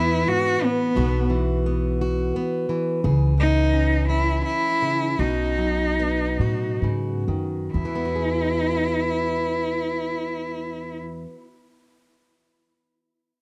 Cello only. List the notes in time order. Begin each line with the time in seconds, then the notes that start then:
Already playing: E4
0.28 F#4
0.64 B3
3.40 D#4
4.08 E4
4.45 E4
5.19 D#4
7.74 E4